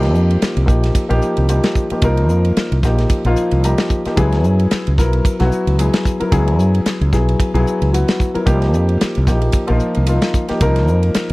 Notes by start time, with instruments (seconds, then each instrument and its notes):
Already playing: fretless electric bass C2, grand piano F3 A#3 D#4 G4
0.03 snare, ride
0.14 fretless electric bass F2, hi-hat pedal
0.31 ride
0.42 muted fretless electric bass stroke, snare, hi-hat pedal, ride
0.57 fretless electric bass C2, ride
0.66 fretless electric bass A#1, grand piano F3 A#3 D#4 G4, kick, hi-hat pedal
0.84 snare, ride
0.95 kick, hi-hat pedal, ride
1.09 fretless electric bass A#1, grand piano F3 A#3 D#4 G4, ride
1.22 hi-hat pedal
1.37 fretless electric bass C2, ride
1.49 grand piano F3 A#3 D#4 G4, hi-hat pedal, ride
1.64 snare, ride
1.75 kick, hi-hat pedal
1.90 grand piano F3 A#3 D#4 G4, muted fretless electric bass stroke, ride
2.02 fretless electric bass C2, grand piano F3 A#3 D#4 A#4, kick, hi-hat pedal, ride
2.17 ride
2.29 fretless electric bass F2, hi-hat pedal
2.45 ride
2.57 muted fretless electric bass stroke, snare, hi-hat pedal, ride
2.72 fretless electric bass C2, ride
2.83 fretless electric bass A#1, grand piano F3 A#3 D#4 G4, kick, snare, hi-hat pedal
2.98 snare, ride
3.10 kick, hi-hat pedal, ride
3.25 fretless electric bass A#1, grand piano F3 A#3 D#4 F4, ride
3.36 hi-hat pedal
3.51 fretless electric bass C2, ride
3.64 grand piano F3 A#3 D#4 G4 A#5, hi-hat pedal, ride
3.78 snare, ride
3.90 kick, hi-hat pedal
4.05 grand piano F3 A#3 D#4 G4, muted fretless electric bass stroke, snare, ride
4.16 fretless electric bass C#2, grand piano F#3 B3 E4 G#4, kick, hi-hat pedal, ride
4.32 snare, ride
4.44 fretless electric bass F#2, hi-hat pedal
4.59 ride
4.71 muted fretless electric bass stroke, snare, hi-hat pedal, ride
4.87 fretless electric bass C#2, ride
4.98 fretless electric bass B1, grand piano F#3 B3 E4 A#4, kick, snare, hi-hat pedal
5.13 ride
5.25 kick, hi-hat pedal, ride
5.40 fretless electric bass B1, grand piano F#3 B3 E4 F#4, snare, ride
5.52 hi-hat pedal
5.67 fretless electric bass C#2, ride
5.79 grand piano F#3 B3 E4 G#4, hi-hat pedal, ride
5.93 snare, ride
6.05 kick, hi-hat pedal
6.20 grand piano F#3 B3 E4 A#4, muted fretless electric bass stroke, ride
6.31 fretless electric bass C#2, grand piano F#3 B3 E4 G#4, kick, hi-hat pedal, ride
6.48 ride
6.59 fretless electric bass F#2, hi-hat pedal
6.75 ride
6.86 muted fretless electric bass stroke, snare, hi-hat pedal, ride
7.01 fretless electric bass C#2, ride
7.13 fretless electric bass B1, grand piano F#3 B3 E4 G#4, kick, snare, hi-hat pedal
7.29 ride
7.40 kick, hi-hat pedal, ride
7.54 fretless electric bass B1, grand piano F#3 B3 E4 G#4, ride
7.67 hi-hat pedal
7.82 fretless electric bass C#2, ride
7.93 grand piano F#3 B3 E4 F#4, hi-hat pedal, ride
8.08 snare, ride
8.20 kick, hi-hat pedal
8.34 grand piano F#3 B3 E4 A#4, muted fretless electric bass stroke, ride
8.46 fretless electric bass C2, grand piano F3 A#3 D#4 G4, kick, hi-hat pedal, ride
8.62 snare, ride
8.74 fretless electric bass F2, hi-hat pedal
8.89 ride
9.01 muted fretless electric bass stroke, snare, hi-hat pedal, ride
9.15 fretless electric bass C2, ride
9.27 fretless electric bass A#1, grand piano F3 A#3 D#4 G4, kick, snare, hi-hat pedal
9.42 ride
9.52 kick, hi-hat pedal, ride
9.67 fretless electric bass A#1, grand piano F3 A#3 D#4 F4, ride
9.80 hi-hat pedal
9.95 fretless electric bass C2, ride
10.07 grand piano F3 A#3 D#4 F4, hi-hat pedal, ride
10.22 snare, ride
10.34 kick, hi-hat pedal
10.48 grand piano F3 A#3 D#4 G4, muted fretless electric bass stroke, snare, ride
10.61 fretless electric bass C2, grand piano F3 A#3 D#4 A#4, kick, hi-hat pedal, ride
10.76 snare, ride
10.88 fretless electric bass F2, hi-hat pedal
11.03 ride
11.14 muted fretless electric bass stroke, snare, hi-hat pedal, ride
11.29 ride